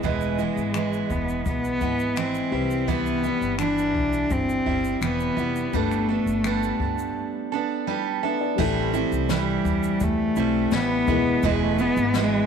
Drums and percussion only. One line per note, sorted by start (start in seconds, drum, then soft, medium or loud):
0.03 kick loud
0.03 shaker medium
0.21 shaker soft
0.39 shaker soft
0.57 shaker soft
0.74 finger snap medium
0.74 shaker medium
0.93 shaker soft
1.10 kick medium
1.10 shaker soft
1.29 shaker soft
1.46 kick medium
1.46 shaker medium
1.65 shaker soft
1.81 kick medium
1.81 shaker soft
1.99 shaker soft
2.17 finger snap loud
2.17 shaker medium
2.35 shaker soft
2.70 shaker medium
2.88 kick loud
2.88 shaker medium
3.06 shaker soft
3.24 shaker soft
3.42 shaker soft
3.59 finger snap medium
3.59 shaker medium
3.78 shaker soft
3.95 kick medium
4.13 shaker soft
4.31 kick medium
4.31 shaker medium
4.50 shaker soft
4.66 kick medium
4.85 shaker soft
5.02 finger snap loud
5.02 shaker medium
5.20 shaker soft
5.38 shaker soft
5.56 shaker medium
5.73 kick loud
5.73 shaker medium
5.91 finger snap soft
5.91 shaker soft
6.27 shaker soft
6.44 finger snap medium
6.44 shaker medium
6.63 shaker soft
6.80 kick medium
6.98 shaker soft
8.58 kick loud
8.58 crash loud
8.94 shaker soft
9.12 shaker soft
9.29 snare loud
9.29 shaker medium
9.65 kick loud
9.65 shaker medium
9.83 shaker medium
10.00 kick loud
10.00 shaker medium
10.36 shaker medium
10.71 snare loud
10.71 shaker medium
11.08 kick medium
11.08 shaker soft
11.43 kick loud
11.43 shaker medium
11.78 shaker soft
11.97 shaker soft
12.14 snare loud
12.14 shaker medium